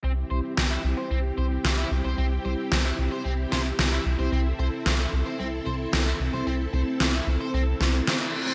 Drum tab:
SD |--o---o-|--o--oo-|--o---o-|--o--oo-|